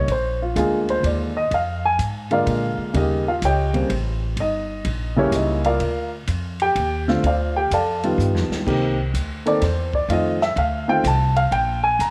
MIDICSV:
0, 0, Header, 1, 5, 480
1, 0, Start_track
1, 0, Key_signature, -2, "major"
1, 0, Tempo, 476569
1, 84, Time_signature, 3, 2, 24, 8
1, 12191, End_track
2, 0, Start_track
2, 0, Title_t, "Upright piano"
2, 0, Program_c, 0, 0
2, 118, Note_on_c, 0, 72, 76
2, 414, Note_off_c, 0, 72, 0
2, 425, Note_on_c, 0, 65, 58
2, 557, Note_off_c, 0, 65, 0
2, 559, Note_on_c, 0, 50, 61
2, 562, Note_on_c, 0, 56, 58
2, 565, Note_on_c, 0, 58, 59
2, 572, Note_on_c, 0, 65, 77
2, 595, Note_on_c, 0, 68, 64
2, 893, Note_off_c, 0, 68, 0
2, 909, Note_on_c, 0, 72, 85
2, 1052, Note_off_c, 0, 72, 0
2, 1067, Note_on_c, 0, 74, 58
2, 1300, Note_off_c, 0, 50, 0
2, 1302, Note_off_c, 0, 56, 0
2, 1303, Note_off_c, 0, 58, 0
2, 1307, Note_off_c, 0, 65, 0
2, 1369, Note_off_c, 0, 74, 0
2, 1377, Note_on_c, 0, 75, 83
2, 1526, Note_off_c, 0, 75, 0
2, 1554, Note_on_c, 0, 77, 78
2, 1853, Note_off_c, 0, 77, 0
2, 1868, Note_on_c, 0, 80, 91
2, 1957, Note_off_c, 0, 80, 0
2, 2322, Note_on_c, 0, 50, 62
2, 2325, Note_on_c, 0, 56, 59
2, 2328, Note_on_c, 0, 58, 59
2, 2330, Note_on_c, 0, 65, 66
2, 2343, Note_on_c, 0, 77, 80
2, 2350, Note_on_c, 0, 74, 65
2, 2352, Note_on_c, 0, 70, 63
2, 2932, Note_off_c, 0, 50, 0
2, 2934, Note_off_c, 0, 56, 0
2, 2935, Note_off_c, 0, 77, 0
2, 2936, Note_off_c, 0, 58, 0
2, 2937, Note_off_c, 0, 65, 0
2, 2938, Note_off_c, 0, 74, 0
2, 2939, Note_off_c, 0, 70, 0
2, 2956, Note_on_c, 0, 49, 54
2, 2963, Note_on_c, 0, 55, 46
2, 2964, Note_on_c, 0, 58, 51
2, 2969, Note_on_c, 0, 63, 59
2, 2989, Note_on_c, 0, 75, 71
2, 2993, Note_on_c, 0, 70, 60
2, 2994, Note_on_c, 0, 67, 56
2, 3251, Note_off_c, 0, 49, 0
2, 3255, Note_off_c, 0, 55, 0
2, 3256, Note_off_c, 0, 58, 0
2, 3258, Note_off_c, 0, 63, 0
2, 3291, Note_off_c, 0, 75, 0
2, 3293, Note_off_c, 0, 67, 0
2, 3293, Note_off_c, 0, 70, 0
2, 3306, Note_on_c, 0, 65, 59
2, 3307, Note_on_c, 0, 77, 75
2, 3452, Note_off_c, 0, 65, 0
2, 3452, Note_off_c, 0, 77, 0
2, 3476, Note_on_c, 0, 73, 63
2, 3477, Note_on_c, 0, 67, 65
2, 3477, Note_on_c, 0, 79, 83
2, 3479, Note_on_c, 0, 75, 58
2, 3761, Note_on_c, 0, 49, 58
2, 3764, Note_on_c, 0, 55, 60
2, 3769, Note_on_c, 0, 58, 48
2, 3770, Note_on_c, 0, 60, 65
2, 3908, Note_off_c, 0, 49, 0
2, 3910, Note_off_c, 0, 55, 0
2, 3910, Note_off_c, 0, 67, 0
2, 3910, Note_off_c, 0, 73, 0
2, 3910, Note_off_c, 0, 79, 0
2, 3912, Note_off_c, 0, 58, 0
2, 3912, Note_off_c, 0, 75, 0
2, 3913, Note_off_c, 0, 60, 0
2, 4435, Note_on_c, 0, 75, 76
2, 4441, Note_on_c, 0, 63, 66
2, 5183, Note_off_c, 0, 75, 0
2, 5186, Note_off_c, 0, 63, 0
2, 5200, Note_on_c, 0, 49, 72
2, 5208, Note_on_c, 0, 55, 65
2, 5209, Note_on_c, 0, 58, 66
2, 5212, Note_on_c, 0, 64, 82
2, 5226, Note_on_c, 0, 73, 90
2, 5228, Note_on_c, 0, 67, 65
2, 5229, Note_on_c, 0, 61, 65
2, 5232, Note_on_c, 0, 70, 70
2, 5372, Note_off_c, 0, 73, 0
2, 5373, Note_off_c, 0, 67, 0
2, 5374, Note_off_c, 0, 61, 0
2, 5375, Note_off_c, 0, 70, 0
2, 5388, Note_on_c, 0, 75, 63
2, 5399, Note_on_c, 0, 63, 57
2, 5691, Note_off_c, 0, 75, 0
2, 5696, Note_off_c, 0, 63, 0
2, 5699, Note_on_c, 0, 77, 79
2, 5700, Note_on_c, 0, 70, 67
2, 5700, Note_on_c, 0, 74, 67
2, 5702, Note_on_c, 0, 65, 67
2, 5812, Note_off_c, 0, 49, 0
2, 5816, Note_off_c, 0, 55, 0
2, 5817, Note_off_c, 0, 58, 0
2, 5818, Note_off_c, 0, 64, 0
2, 6141, Note_off_c, 0, 77, 0
2, 6142, Note_off_c, 0, 70, 0
2, 6142, Note_off_c, 0, 74, 0
2, 6143, Note_off_c, 0, 65, 0
2, 6666, Note_on_c, 0, 67, 75
2, 6666, Note_on_c, 0, 79, 95
2, 7130, Note_on_c, 0, 50, 81
2, 7134, Note_on_c, 0, 57, 74
2, 7136, Note_on_c, 0, 60, 65
2, 7141, Note_on_c, 0, 65, 87
2, 7256, Note_off_c, 0, 67, 0
2, 7256, Note_off_c, 0, 79, 0
2, 7272, Note_off_c, 0, 50, 0
2, 7274, Note_off_c, 0, 57, 0
2, 7276, Note_off_c, 0, 60, 0
2, 7278, Note_off_c, 0, 65, 0
2, 7314, Note_on_c, 0, 74, 58
2, 7318, Note_on_c, 0, 65, 54
2, 7318, Note_on_c, 0, 77, 74
2, 7321, Note_on_c, 0, 72, 57
2, 7613, Note_off_c, 0, 74, 0
2, 7615, Note_off_c, 0, 65, 0
2, 7615, Note_off_c, 0, 77, 0
2, 7617, Note_off_c, 0, 72, 0
2, 7618, Note_on_c, 0, 79, 83
2, 7627, Note_on_c, 0, 67, 67
2, 7768, Note_off_c, 0, 79, 0
2, 7772, Note_off_c, 0, 67, 0
2, 7790, Note_on_c, 0, 74, 63
2, 7792, Note_on_c, 0, 69, 60
2, 7793, Note_on_c, 0, 77, 64
2, 7793, Note_on_c, 0, 81, 72
2, 8093, Note_on_c, 0, 51, 68
2, 8099, Note_on_c, 0, 55, 65
2, 8102, Note_on_c, 0, 65, 75
2, 8103, Note_on_c, 0, 59, 61
2, 8226, Note_off_c, 0, 74, 0
2, 8227, Note_off_c, 0, 69, 0
2, 8227, Note_off_c, 0, 77, 0
2, 8227, Note_off_c, 0, 81, 0
2, 8698, Note_off_c, 0, 51, 0
2, 8701, Note_off_c, 0, 55, 0
2, 8702, Note_off_c, 0, 65, 0
2, 8703, Note_off_c, 0, 59, 0
2, 8726, Note_on_c, 0, 51, 66
2, 8728, Note_on_c, 0, 58, 59
2, 8733, Note_on_c, 0, 60, 53
2, 8740, Note_on_c, 0, 67, 73
2, 9016, Note_off_c, 0, 51, 0
2, 9017, Note_off_c, 0, 58, 0
2, 9019, Note_off_c, 0, 60, 0
2, 9023, Note_off_c, 0, 67, 0
2, 9524, Note_on_c, 0, 51, 68
2, 9526, Note_on_c, 0, 58, 64
2, 9531, Note_on_c, 0, 60, 65
2, 9536, Note_on_c, 0, 69, 77
2, 9545, Note_on_c, 0, 74, 87
2, 9669, Note_off_c, 0, 51, 0
2, 9670, Note_off_c, 0, 58, 0
2, 9672, Note_off_c, 0, 60, 0
2, 9674, Note_off_c, 0, 69, 0
2, 9691, Note_off_c, 0, 74, 0
2, 9707, Note_on_c, 0, 72, 62
2, 10009, Note_off_c, 0, 72, 0
2, 10020, Note_on_c, 0, 74, 78
2, 10167, Note_off_c, 0, 74, 0
2, 10167, Note_on_c, 0, 51, 63
2, 10169, Note_on_c, 0, 57, 57
2, 10171, Note_on_c, 0, 65, 76
2, 10172, Note_on_c, 0, 60, 52
2, 10195, Note_on_c, 0, 75, 74
2, 10456, Note_off_c, 0, 51, 0
2, 10457, Note_off_c, 0, 57, 0
2, 10458, Note_off_c, 0, 60, 0
2, 10458, Note_off_c, 0, 65, 0
2, 10493, Note_off_c, 0, 75, 0
2, 10499, Note_on_c, 0, 76, 88
2, 10647, Note_off_c, 0, 76, 0
2, 10660, Note_on_c, 0, 77, 82
2, 10957, Note_on_c, 0, 51, 73
2, 10962, Note_on_c, 0, 57, 72
2, 10963, Note_on_c, 0, 60, 70
2, 10965, Note_off_c, 0, 77, 0
2, 10969, Note_on_c, 0, 65, 77
2, 10971, Note_on_c, 0, 79, 101
2, 11104, Note_off_c, 0, 51, 0
2, 11107, Note_off_c, 0, 57, 0
2, 11108, Note_off_c, 0, 60, 0
2, 11111, Note_off_c, 0, 65, 0
2, 11123, Note_off_c, 0, 79, 0
2, 11154, Note_on_c, 0, 81, 88
2, 11448, Note_on_c, 0, 77, 90
2, 11451, Note_off_c, 0, 81, 0
2, 11601, Note_off_c, 0, 77, 0
2, 11606, Note_on_c, 0, 79, 89
2, 11917, Note_off_c, 0, 79, 0
2, 11920, Note_on_c, 0, 80, 90
2, 12077, Note_off_c, 0, 80, 0
2, 12095, Note_on_c, 0, 82, 75
2, 12191, Note_off_c, 0, 82, 0
2, 12191, End_track
3, 0, Start_track
3, 0, Title_t, "Upright bass"
3, 0, Program_c, 1, 32
3, 78, Note_on_c, 1, 34, 80
3, 547, Note_off_c, 1, 34, 0
3, 561, Note_on_c, 1, 38, 93
3, 1029, Note_off_c, 1, 38, 0
3, 1039, Note_on_c, 1, 39, 88
3, 1508, Note_off_c, 1, 39, 0
3, 1520, Note_on_c, 1, 41, 74
3, 1989, Note_off_c, 1, 41, 0
3, 2000, Note_on_c, 1, 44, 77
3, 2470, Note_off_c, 1, 44, 0
3, 2481, Note_on_c, 1, 46, 89
3, 2783, Note_off_c, 1, 46, 0
3, 2958, Note_on_c, 1, 39, 72
3, 3429, Note_off_c, 1, 39, 0
3, 3443, Note_on_c, 1, 37, 84
3, 3912, Note_off_c, 1, 37, 0
3, 3922, Note_on_c, 1, 33, 85
3, 4391, Note_off_c, 1, 33, 0
3, 4399, Note_on_c, 1, 31, 78
3, 4869, Note_off_c, 1, 31, 0
3, 4882, Note_on_c, 1, 34, 84
3, 5351, Note_off_c, 1, 34, 0
3, 5356, Note_on_c, 1, 37, 91
3, 5828, Note_off_c, 1, 37, 0
3, 5840, Note_on_c, 1, 38, 74
3, 6310, Note_off_c, 1, 38, 0
3, 6319, Note_on_c, 1, 41, 87
3, 6789, Note_off_c, 1, 41, 0
3, 6803, Note_on_c, 1, 39, 90
3, 7271, Note_off_c, 1, 39, 0
3, 7281, Note_on_c, 1, 38, 84
3, 7750, Note_off_c, 1, 38, 0
3, 7764, Note_on_c, 1, 41, 83
3, 8231, Note_off_c, 1, 41, 0
3, 8236, Note_on_c, 1, 43, 85
3, 8402, Note_off_c, 1, 43, 0
3, 8402, Note_on_c, 1, 41, 53
3, 8552, Note_off_c, 1, 41, 0
3, 8558, Note_on_c, 1, 39, 62
3, 8711, Note_off_c, 1, 39, 0
3, 8727, Note_on_c, 1, 36, 77
3, 9193, Note_off_c, 1, 36, 0
3, 9204, Note_on_c, 1, 38, 76
3, 9671, Note_off_c, 1, 38, 0
3, 9683, Note_on_c, 1, 40, 86
3, 10150, Note_off_c, 1, 40, 0
3, 10157, Note_on_c, 1, 41, 84
3, 10627, Note_off_c, 1, 41, 0
3, 10637, Note_on_c, 1, 38, 90
3, 11106, Note_off_c, 1, 38, 0
3, 11117, Note_on_c, 1, 36, 94
3, 11586, Note_off_c, 1, 36, 0
3, 11596, Note_on_c, 1, 34, 84
3, 12065, Note_off_c, 1, 34, 0
3, 12078, Note_on_c, 1, 41, 82
3, 12191, Note_off_c, 1, 41, 0
3, 12191, End_track
4, 0, Start_track
4, 0, Title_t, "Muted upright bass strokes"
4, 2796, Note_on_c, 9, 29, 40
4, 2897, Note_off_c, 9, 29, 0
4, 12191, End_track
5, 0, Start_track
5, 0, Title_t, "Drums"
5, 80, Note_on_c, 9, 51, 57
5, 82, Note_on_c, 9, 36, 22
5, 181, Note_off_c, 9, 51, 0
5, 183, Note_off_c, 9, 36, 0
5, 564, Note_on_c, 9, 36, 23
5, 565, Note_on_c, 9, 44, 53
5, 565, Note_on_c, 9, 51, 56
5, 665, Note_off_c, 9, 36, 0
5, 665, Note_off_c, 9, 44, 0
5, 665, Note_off_c, 9, 51, 0
5, 891, Note_on_c, 9, 51, 41
5, 992, Note_off_c, 9, 51, 0
5, 1045, Note_on_c, 9, 36, 17
5, 1046, Note_on_c, 9, 51, 59
5, 1145, Note_off_c, 9, 36, 0
5, 1147, Note_off_c, 9, 51, 0
5, 1523, Note_on_c, 9, 51, 50
5, 1524, Note_on_c, 9, 36, 23
5, 1624, Note_off_c, 9, 51, 0
5, 1625, Note_off_c, 9, 36, 0
5, 2003, Note_on_c, 9, 36, 22
5, 2003, Note_on_c, 9, 44, 46
5, 2003, Note_on_c, 9, 51, 60
5, 2104, Note_off_c, 9, 36, 0
5, 2104, Note_off_c, 9, 44, 0
5, 2104, Note_off_c, 9, 51, 0
5, 2323, Note_on_c, 9, 51, 37
5, 2424, Note_off_c, 9, 51, 0
5, 2483, Note_on_c, 9, 36, 19
5, 2484, Note_on_c, 9, 51, 58
5, 2584, Note_off_c, 9, 36, 0
5, 2585, Note_off_c, 9, 51, 0
5, 2964, Note_on_c, 9, 51, 61
5, 2965, Note_on_c, 9, 36, 24
5, 3064, Note_off_c, 9, 51, 0
5, 3066, Note_off_c, 9, 36, 0
5, 3443, Note_on_c, 9, 44, 57
5, 3443, Note_on_c, 9, 51, 65
5, 3446, Note_on_c, 9, 36, 18
5, 3544, Note_off_c, 9, 44, 0
5, 3544, Note_off_c, 9, 51, 0
5, 3547, Note_off_c, 9, 36, 0
5, 3766, Note_on_c, 9, 51, 42
5, 3867, Note_off_c, 9, 51, 0
5, 3925, Note_on_c, 9, 36, 19
5, 3925, Note_on_c, 9, 51, 67
5, 4026, Note_off_c, 9, 36, 0
5, 4026, Note_off_c, 9, 51, 0
5, 4399, Note_on_c, 9, 51, 53
5, 4404, Note_on_c, 9, 36, 20
5, 4499, Note_off_c, 9, 51, 0
5, 4504, Note_off_c, 9, 36, 0
5, 4880, Note_on_c, 9, 51, 63
5, 4884, Note_on_c, 9, 36, 20
5, 4981, Note_off_c, 9, 51, 0
5, 4985, Note_off_c, 9, 36, 0
5, 5359, Note_on_c, 9, 44, 61
5, 5359, Note_on_c, 9, 51, 66
5, 5363, Note_on_c, 9, 36, 24
5, 5459, Note_off_c, 9, 44, 0
5, 5459, Note_off_c, 9, 51, 0
5, 5463, Note_off_c, 9, 36, 0
5, 5684, Note_on_c, 9, 51, 44
5, 5785, Note_off_c, 9, 51, 0
5, 5840, Note_on_c, 9, 51, 52
5, 5842, Note_on_c, 9, 36, 22
5, 5941, Note_off_c, 9, 51, 0
5, 5943, Note_off_c, 9, 36, 0
5, 6318, Note_on_c, 9, 44, 54
5, 6318, Note_on_c, 9, 51, 61
5, 6324, Note_on_c, 9, 36, 24
5, 6419, Note_off_c, 9, 44, 0
5, 6419, Note_off_c, 9, 51, 0
5, 6425, Note_off_c, 9, 36, 0
5, 6643, Note_on_c, 9, 51, 45
5, 6743, Note_off_c, 9, 51, 0
5, 6804, Note_on_c, 9, 36, 27
5, 6804, Note_on_c, 9, 51, 64
5, 6905, Note_off_c, 9, 36, 0
5, 6905, Note_off_c, 9, 51, 0
5, 7128, Note_on_c, 9, 38, 43
5, 7228, Note_off_c, 9, 38, 0
5, 7287, Note_on_c, 9, 36, 21
5, 7289, Note_on_c, 9, 51, 55
5, 7388, Note_off_c, 9, 36, 0
5, 7390, Note_off_c, 9, 51, 0
5, 7767, Note_on_c, 9, 36, 19
5, 7768, Note_on_c, 9, 44, 46
5, 7768, Note_on_c, 9, 51, 68
5, 7868, Note_off_c, 9, 36, 0
5, 7869, Note_off_c, 9, 44, 0
5, 7869, Note_off_c, 9, 51, 0
5, 8091, Note_on_c, 9, 51, 44
5, 8192, Note_off_c, 9, 51, 0
5, 8252, Note_on_c, 9, 44, 50
5, 8353, Note_off_c, 9, 44, 0
5, 8415, Note_on_c, 9, 38, 54
5, 8515, Note_off_c, 9, 38, 0
5, 8577, Note_on_c, 9, 38, 78
5, 8677, Note_off_c, 9, 38, 0
5, 8729, Note_on_c, 9, 36, 69
5, 8736, Note_on_c, 9, 49, 67
5, 8830, Note_off_c, 9, 36, 0
5, 8837, Note_off_c, 9, 49, 0
5, 9208, Note_on_c, 9, 36, 18
5, 9211, Note_on_c, 9, 44, 61
5, 9211, Note_on_c, 9, 51, 64
5, 9308, Note_off_c, 9, 36, 0
5, 9312, Note_off_c, 9, 44, 0
5, 9312, Note_off_c, 9, 51, 0
5, 9532, Note_on_c, 9, 51, 47
5, 9632, Note_off_c, 9, 51, 0
5, 9684, Note_on_c, 9, 51, 65
5, 9685, Note_on_c, 9, 36, 23
5, 9685, Note_on_c, 9, 38, 34
5, 9785, Note_off_c, 9, 36, 0
5, 9785, Note_off_c, 9, 51, 0
5, 9786, Note_off_c, 9, 38, 0
5, 10006, Note_on_c, 9, 36, 58
5, 10107, Note_off_c, 9, 36, 0
5, 10164, Note_on_c, 9, 36, 20
5, 10169, Note_on_c, 9, 51, 61
5, 10265, Note_off_c, 9, 36, 0
5, 10270, Note_off_c, 9, 51, 0
5, 10487, Note_on_c, 9, 38, 50
5, 10588, Note_off_c, 9, 38, 0
5, 10641, Note_on_c, 9, 36, 21
5, 10642, Note_on_c, 9, 51, 55
5, 10742, Note_off_c, 9, 36, 0
5, 10743, Note_off_c, 9, 51, 0
5, 11121, Note_on_c, 9, 36, 20
5, 11123, Note_on_c, 9, 44, 62
5, 11123, Note_on_c, 9, 51, 66
5, 11221, Note_off_c, 9, 36, 0
5, 11224, Note_off_c, 9, 44, 0
5, 11224, Note_off_c, 9, 51, 0
5, 11444, Note_on_c, 9, 51, 47
5, 11545, Note_off_c, 9, 51, 0
5, 11599, Note_on_c, 9, 36, 20
5, 11602, Note_on_c, 9, 51, 54
5, 11700, Note_off_c, 9, 36, 0
5, 11703, Note_off_c, 9, 51, 0
5, 12081, Note_on_c, 9, 36, 23
5, 12084, Note_on_c, 9, 44, 46
5, 12084, Note_on_c, 9, 51, 66
5, 12181, Note_off_c, 9, 36, 0
5, 12185, Note_off_c, 9, 44, 0
5, 12185, Note_off_c, 9, 51, 0
5, 12191, End_track
0, 0, End_of_file